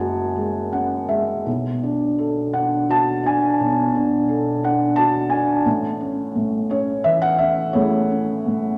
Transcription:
0.00 1.43 F#1 medium
0.00 1.43 F#2 medium
0.00 0.36 G#3 medium
0.00 0.72 C#4 soft
0.00 1.42 F#4 medium
0.00 0.70 C#5 medium
0.00 0.73 F#5 medium
0.00 1.48 G#5 medium
0.00 1.49 A5 loud
0.36 1.07 G#3 soft
0.72 1.44 C#4 soft
0.72 1.07 F#5 medium
1.08 1.45 G#3 soft
1.08 1.43 E5 medium
1.46 3.56 B1 soft
1.46 3.56 B2 medium
1.83 2.52 D4 soft
2.19 3.56 A4 soft
2.53 3.22 D4 medium
2.53 2.91 F#5 medium
2.89 4.25 F#4 soft
2.89 3.27 A5 medium
3.24 3.93 D4 medium
3.24 3.58 G#5 medium
3.60 5.62 B1 medium
3.60 5.62 B2 medium
3.95 4.62 D4 medium
4.29 5.62 A4 medium
4.64 5.31 D4 medium
4.64 4.99 F#5 medium
4.96 5.64 F#4 medium
4.96 5.32 A5 medium
5.30 5.65 D4 medium
5.30 5.62 G#5 medium
5.65 7.69 A1 medium
5.65 6.34 A2 medium
6.00 6.68 C#4 medium
6.35 7.70 A2 medium
6.70 7.38 C#4 medium
6.70 7.06 C#5 medium
7.04 8.40 E3 medium
7.04 7.20 E5 medium
7.22 7.38 F#5 loud
7.39 8.09 C#4 medium
7.39 7.71 E5 medium
7.73 8.78 A1 medium
7.73 8.44 A2 medium
7.73 8.78 E4 medium
7.73 8.78 G#4 medium
7.73 8.78 C#5 medium
8.10 8.78 C#4 medium
8.46 8.78 A2 soft

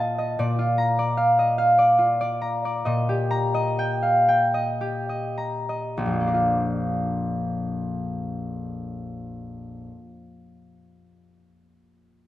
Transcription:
0.00 0.38 A#2 medium
0.00 0.58 F4 medium
0.00 0.17 D#5 medium
0.00 1.16 F5 medium
0.00 0.41 A5 medium
0.18 0.41 D#5 medium
0.39 2.85 A#2 medium
0.39 0.98 D5 medium
0.59 1.97 F4 medium
0.78 2.40 A#5 medium
0.99 1.77 D5 medium
1.17 1.57 F5 medium
1.39 1.72 D#5 soft
1.58 2.89 F5 medium
1.78 2.20 D5 medium
1.99 2.88 F4 medium
2.21 2.64 D5 medium
2.42 3.29 A#5 medium
2.65 2.89 D5 medium
2.85 6.04 A#2 medium
2.85 3.53 D#5 medium
3.09 4.80 G4 medium
3.31 5.36 A#5 medium
3.54 4.53 D#5 medium
3.79 4.27 G5 medium
4.03 4.45 F5 soft
4.28 6.04 G5 medium
4.54 5.08 D#5 soft
4.81 6.04 G4 soft
5.09 5.68 D#5 soft
5.38 9.28 A#5 soft
5.69 6.03 D#5 soft
5.97 9.87 A#1 soft
6.06 9.96 F2 soft
6.13 9.95 F3 soft
6.20 9.42 A#3 soft
6.27 9.29 D4 soft
6.34 9.36 F4 soft

